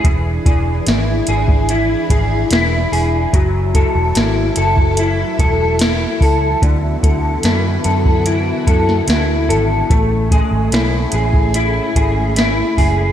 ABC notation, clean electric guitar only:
X:1
M:4/4
L:1/8
Q:1/4=73
K:A
V:1 name="Clean electric guitar"
E, G E G E G E G | F, A E A E A E A | D, A E A E A E A | A, G E G E G E G |]